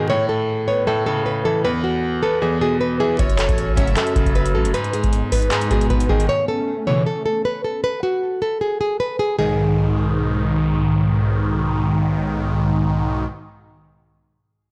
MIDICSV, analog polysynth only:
0, 0, Header, 1, 2, 480
1, 0, Start_track
1, 0, Tempo, 387097
1, 119, Time_signature, 4, 2, 24, 8
1, 18243, End_track
2, 0, Start_track
2, 0, Title_t, "Analog polysynth"
2, 0, Program_c, 0, 90
2, 4680, Note_on_c, 0, 45, 92
2, 4680, Note_on_c, 0, 49, 103
2, 4680, Note_on_c, 0, 54, 111
2, 4883, Note_off_c, 0, 45, 0
2, 4883, Note_off_c, 0, 49, 0
2, 4883, Note_off_c, 0, 54, 0
2, 8518, Note_on_c, 0, 52, 112
2, 8519, Note_on_c, 0, 47, 104
2, 8519, Note_on_c, 0, 49, 93
2, 8722, Note_off_c, 0, 52, 0
2, 8723, Note_off_c, 0, 47, 0
2, 8723, Note_off_c, 0, 49, 0
2, 11638, Note_on_c, 0, 44, 93
2, 11638, Note_on_c, 0, 51, 107
2, 11639, Note_on_c, 0, 35, 96
2, 16421, Note_off_c, 0, 35, 0
2, 16421, Note_off_c, 0, 44, 0
2, 16421, Note_off_c, 0, 51, 0
2, 18243, End_track
0, 0, End_of_file